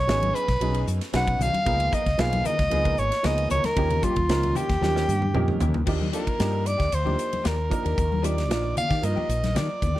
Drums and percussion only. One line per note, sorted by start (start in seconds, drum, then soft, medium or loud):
0.09 snare loud
0.09 ride medium
0.22 ride medium
0.22 high conga medium
0.35 hi-hat pedal medium
0.48 kick medium
0.48 snare soft
0.48 ride medium
0.61 ride medium
0.61 high conga medium
0.74 ride medium
0.87 hi-hat pedal medium
1.01 snare soft
1.01 ride medium
1.13 snare loud
1.13 ride medium
1.28 kick medium
1.28 ride medium
1.40 hi-hat pedal medium
1.40 low conga medium
1.54 ride medium
1.54 high conga medium
1.66 kick loud
1.66 ride medium
1.80 ride medium
1.93 kick medium
1.93 hi-hat pedal medium
2.06 kick medium
2.06 snare soft
2.06 ride medium
2.19 snare loud
2.19 ride medium
2.33 ride medium
2.33 high conga medium
2.45 hi-hat pedal medium
2.45 low conga medium
2.59 kick medium
2.59 snare soft
2.59 ride medium
2.71 ride medium
2.71 high conga medium
2.85 kick medium
2.85 ride medium
2.98 hi-hat pedal medium
3.12 snare soft
3.12 ride medium
3.24 snare medium
3.24 ride medium
3.38 ride medium
3.50 hi-hat pedal medium
3.50 low conga medium
3.64 snare soft
3.64 ride medium
3.64 high conga medium
3.77 kick loud
3.77 ride medium
3.90 ride medium
3.90 low conga medium
4.03 kick medium
4.03 hi-hat pedal medium
4.03 high conga medium
4.16 kick medium
4.16 ride medium
4.29 snare loud
4.29 ride medium
4.43 ride medium
4.43 high conga medium
4.55 hi-hat pedal medium
4.55 low conga medium
4.70 kick medium
4.70 snare soft
4.70 ride medium
4.82 snare medium
4.82 high conga medium
4.96 snare medium
5.09 hi-hat pedal medium
5.09 high tom medium
5.22 high tom medium
5.22 high conga medium
5.35 mid tom medium
5.35 high conga medium
5.48 mid tom medium
5.48 high conga medium
5.60 floor tom loud
5.60 hi-hat pedal medium
5.60 low conga medium
5.74 floor tom medium
5.74 low conga medium
5.87 kick medium
5.87 crash medium
6.01 high conga medium
6.13 hi-hat pedal medium
6.13 ride medium
6.27 kick medium
6.27 ride medium
6.40 snare loud
6.40 hi-hat pedal medium
6.40 ride medium
6.66 hi-hat pedal medium
6.66 ride medium
6.80 kick medium
6.80 snare soft
6.80 ride medium
6.92 hi-hat pedal medium
6.92 ride medium
7.07 high conga medium
7.19 hi-hat pedal medium
7.19 ride soft
7.33 ride medium
7.33 high conga medium
7.45 snare medium
7.45 hi-hat pedal medium
7.45 ride medium
7.71 kick medium
7.71 hi-hat pedal medium
7.71 ride medium
7.86 ride medium
7.98 kick loud
7.98 hi-hat pedal medium
7.98 ride medium
8.12 high conga medium
8.24 hi-hat pedal medium
8.24 ride medium
8.38 snare soft
8.38 ride medium
8.51 snare loud
8.51 hi-hat pedal medium
8.51 ride medium
8.77 hi-hat pedal medium
8.77 ride medium
8.77 low conga medium
8.90 kick medium
8.90 snare soft
8.90 ride medium
9.03 hi-hat pedal medium
9.03 ride medium
9.17 high conga medium
9.30 hi-hat pedal medium
9.30 ride medium
9.44 snare soft
9.44 ride medium
9.44 high conga medium
9.56 snare medium
9.56 hi-hat pedal medium
9.56 ride medium
9.82 kick medium
9.82 hi-hat pedal medium
9.82 ride medium
9.82 low conga medium